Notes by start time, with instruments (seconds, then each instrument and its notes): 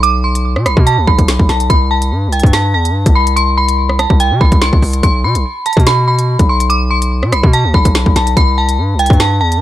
Already playing: 808-style bass B1
0.03 synth bell D6, closed hi-hat
0.24 synth bell C6
0.35 closed hi-hat
0.56 808-style bass B2, cross-stick
0.66 808-style bass B1, synth bell B5, cross-stick, closed hi-hat
0.77 808-style bass B2, kick
0.87 synth bell A5, closed hi-hat
0.98 808-style bass D2
1.07 808-style bass B1, synth bell B5, kick
1.19 808-style bass B1, kick, closed hi-hat
1.28 snare, closed hi-hat
1.39 808-style bass B1, kick
1.49 808-style bass B1, synth bell A5, snare, closed hi-hat
1.60 closed hi-hat
1.70 808-style bass C2, synth bell B5, kick, closed hi-hat
1.91 synth bell A5
2.02 closed hi-hat
2.12 808-style bass G2
2.27 808-style bass C2
2.32 synth bell G5, closed hi-hat
2.40 808-style bass G2, kick, closed hi-hat
2.46 closed hi-hat
2.53 synth bell A5, snare, closed hi-hat
2.74 808-style bass E2, synth bell A5
2.85 closed hi-hat
2.90 808-style bass G2
3.06 808-style bass C2, kick, closed hi-hat
3.15 synth bell B5
3.27 closed hi-hat
3.36 synth bell C6, closed hi-hat
3.57 synth bell B5
3.68 closed hi-hat
3.89 cross-stick
3.99 synth bell A5, cross-stick, closed hi-hat
4.10 808-style bass C2, kick
4.20 synth bell G5, closed hi-hat
4.31 808-style bass C3
4.41 808-style bass C2, synth bell B5, kick
4.52 808-style bass C2, kick, closed hi-hat
4.62 synth bell C6, snare, closed hi-hat
4.73 808-style bass C2, kick
4.82 808-style bass C2, open hi-hat
4.93 closed hi-hat
5.03 808-style bass B1, synth bell C6, kick, closed hi-hat
5.24 808-style bass B2, synth bell B5
5.35 808-style bass B1, closed hi-hat
5.66 synth bell A5, closed hi-hat
5.73 closed hi-hat
5.77 808-style bass B2, kick, closed hi-hat
5.87 synth bell B5, snare, closed hi-hat
6.08 synth bell B5
6.19 closed hi-hat
6.39 808-style bass B1, kick, closed hi-hat
6.49 synth bell C6
6.60 closed hi-hat
6.70 synth bell D6, closed hi-hat
6.91 synth bell C6
7.02 closed hi-hat
7.23 808-style bass B2, cross-stick
7.32 808-style bass B1, synth bell B5, cross-stick, closed hi-hat
7.43 808-style bass B2, kick
7.53 synth bell A5, closed hi-hat
7.64 808-style bass D2
7.74 808-style bass B1, synth bell B5, kick
7.85 808-style bass B1, kick, closed hi-hat
7.95 snare, closed hi-hat
8.06 808-style bass B1, kick
8.16 808-style bass B1, synth bell A5, snare, closed hi-hat
8.27 closed hi-hat
8.37 808-style bass C2, synth bell B5, kick, closed hi-hat
8.58 synth bell A5
8.69 closed hi-hat
8.78 808-style bass G2
8.94 808-style bass C2
8.99 synth bell G5, closed hi-hat
9.06 closed hi-hat
9.10 808-style bass G2, kick, closed hi-hat
9.20 synth bell A5, snare, closed hi-hat
9.41 808-style bass E2, synth bell A5
9.52 closed hi-hat
9.57 808-style bass G2